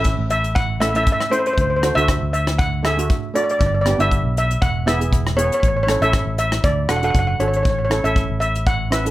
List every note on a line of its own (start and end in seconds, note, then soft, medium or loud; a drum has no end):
0.00 0.15 A1 medium
0.00 0.46 A3 medium
0.00 0.47 C#4 medium
0.00 0.47 E4 medium
0.00 0.29 E5 loud
0.04 kick medium
0.04 closed hi-hat medium
0.19 1.06 A1 medium
0.30 0.57 E5 loud
0.30 closed hi-hat medium
0.44 closed hi-hat medium
0.55 0.82 F#5 loud
0.55 kick loud
0.55 closed hi-hat medium
0.80 0.89 A3 medium
0.80 0.89 C#4 medium
0.80 0.90 E4 medium
0.80 0.88 E5 medium
0.80 cross-stick medium
0.80 closed hi-hat loud
0.89 0.95 E5 medium
0.94 1.17 A3 medium
0.94 1.18 C#4 medium
0.94 1.18 E4 medium
0.94 1.02 E5 loud
0.94 closed hi-hat medium
1.03 1.11 E5 medium
1.03 kick loud
1.03 closed hi-hat medium
1.12 1.19 E5 medium
1.20 1.27 E5 medium
1.20 cross-stick medium
1.30 1.56 A3 medium
1.30 1.57 C#4 medium
1.30 1.58 E4 medium
1.30 1.38 C5 loud
1.30 closed hi-hat medium
1.39 1.46 C5 medium
1.46 1.52 C5 medium
1.46 closed hi-hat medium
1.53 1.60 C5 medium
1.58 1.91 D2 loud
1.58 1.69 C5 medium
1.58 kick loud
1.58 closed hi-hat medium
1.70 1.75 C5 medium
1.76 1.83 C5 medium
1.82 1.90 A3 medium
1.82 1.91 D4 medium
1.82 1.91 F#4 medium
1.82 1.93 C5 medium
1.82 cross-stick medium
1.82 closed hi-hat medium
1.95 2.18 D2 medium
1.95 2.49 A3 medium
1.95 2.50 D4 medium
1.95 2.50 F#4 medium
1.95 2.32 E5 loud
1.95 closed hi-hat medium
2.08 kick medium
2.08 cross-stick medium
2.08 closed hi-hat medium
2.22 3.09 D2 medium
2.33 2.45 E5 loud
2.33 closed hi-hat medium
2.47 cross-stick medium
2.47 closed hi-hat medium
2.58 2.85 F#5 loud
2.58 kick loud
2.58 closed hi-hat medium
2.83 2.92 A3 medium
2.83 2.92 D4 medium
2.83 2.92 G#4 medium
2.83 3.37 E5 loud
2.83 cross-stick medium
2.83 closed hi-hat medium
2.97 3.20 A3 medium
2.97 3.20 D4 medium
2.97 3.21 F#4 medium
2.97 closed hi-hat medium
3.10 kick loud
3.10 closed hi-hat medium
3.34 3.60 A3 medium
3.34 3.60 D4 medium
3.34 3.61 F#4 medium
3.34 3.43 D5 loud
3.34 closed hi-hat medium
3.44 3.50 D5 medium
3.49 3.58 D5 medium
3.49 closed hi-hat medium
3.59 3.94 G1 loud
3.59 3.65 D5 medium
3.59 kick loud
3.59 closed hi-hat medium
3.66 3.73 D5 medium
3.75 3.80 D5 medium
3.81 3.93 B3 medium
3.81 3.88 D5 medium
3.86 3.94 D4 medium
3.86 3.94 G4 medium
3.86 3.96 D5 medium
3.86 cross-stick medium
3.86 closed hi-hat medium
3.98 4.21 G1 medium
3.98 4.52 B3 medium
3.98 4.52 D4 medium
3.98 4.52 E4 medium
3.98 4.37 E5 loud
3.98 closed hi-hat medium
4.11 kick medium
4.11 closed hi-hat medium
4.24 4.56 B1 medium
4.37 4.61 E5 loud
4.37 closed hi-hat medium
4.51 closed hi-hat medium
4.62 5.49 E1 loud
4.62 4.88 F#5 loud
4.62 kick loud
4.62 closed hi-hat medium
4.86 4.95 B3 medium
4.86 4.95 E4 medium
4.86 4.95 G#4 medium
4.86 5.39 E5 medium
4.86 cross-stick medium
4.86 closed hi-hat medium
5.00 5.23 B3 medium
5.00 5.23 E4 medium
5.00 5.23 G#4 medium
5.00 closed hi-hat medium
5.13 kick loud
5.13 closed hi-hat medium
5.27 cross-stick medium
5.36 5.62 B3 medium
5.36 5.63 E4 medium
5.36 5.63 G#4 medium
5.36 5.43 C#5 loud
5.36 closed hi-hat medium
5.45 5.53 C#5 medium
5.52 5.59 C#5 medium
5.52 closed hi-hat medium
5.60 5.96 A1 loud
5.60 5.67 C#5 medium
5.60 kick loud
5.60 closed hi-hat medium
5.68 5.75 C#5 medium
5.77 5.82 C#5 medium
5.83 5.96 C#4 medium
5.83 5.90 C#5 medium
5.88 5.96 E4 medium
5.88 5.97 A4 medium
5.88 5.99 C#5 medium
5.88 cross-stick medium
5.88 closed hi-hat medium
6.01 6.23 A1 medium
6.01 6.55 C#4 medium
6.01 6.55 E4 medium
6.01 6.56 A4 medium
6.01 6.37 E5 loud
6.01 closed hi-hat medium
6.13 kick medium
6.13 cross-stick medium
6.13 closed hi-hat medium
6.26 6.58 A1 medium
6.38 6.65 E5 loud
6.38 closed hi-hat medium
6.52 cross-stick medium
6.52 closed hi-hat medium
6.64 6.86 D2 loud
6.64 6.75 D5 medium
6.64 kick loud
6.64 closed hi-hat medium
6.88 7.11 E1 medium
6.88 6.97 D4 medium
6.88 6.98 F#4 medium
6.88 6.98 A4 medium
6.88 6.95 F#5 medium
6.88 cross-stick medium
6.88 closed hi-hat medium
6.97 7.03 F#5 medium
7.02 7.25 D4 medium
7.02 7.25 F#4 medium
7.02 7.26 A4 medium
7.02 7.09 F#5 loud
7.02 closed hi-hat medium
7.10 7.37 F#1 loud
7.10 7.18 F#5 medium
7.15 kick loud
7.15 closed hi-hat medium
7.19 7.26 F#5 medium
7.27 7.35 F#5 medium
7.39 7.62 G#1 medium
7.39 7.65 D4 medium
7.39 7.66 F#4 medium
7.39 7.66 A4 medium
7.39 7.47 C#5 medium
7.39 closed hi-hat medium
7.48 7.55 C#5 medium
7.53 7.62 C#5 medium
7.53 closed hi-hat medium
7.63 7.99 A1 loud
7.63 7.68 C#5 medium
7.63 kick loud
7.63 closed hi-hat medium
7.70 7.77 C#5 medium
7.79 7.83 C#5 medium
7.85 7.91 C#5 medium
7.90 7.98 C#4 medium
7.90 7.99 E4 medium
7.90 7.99 A4 medium
7.90 8.00 C#5 medium
7.90 cross-stick medium
7.90 closed hi-hat medium
8.04 8.26 A1 medium
8.04 8.57 C#4 medium
8.04 8.57 E4 medium
8.04 8.58 A4 medium
8.04 8.39 E5 loud
8.04 closed hi-hat medium
8.16 kick medium
8.16 closed hi-hat medium
8.30 9.11 A1 medium
8.40 8.67 E5 medium
8.40 closed hi-hat medium
8.55 closed hi-hat medium
8.67 8.78 F#5 loud
8.67 kick loud
8.67 closed hi-hat medium
8.91 8.99 C#4 medium
8.91 9.00 E4 medium
8.91 9.00 B4 medium
8.91 9.11 E5 medium
8.91 cross-stick medium
8.91 closed hi-hat medium
9.05 9.11 C#4 medium
9.05 9.11 E4 medium
9.05 9.11 A4 medium
9.05 closed hi-hat medium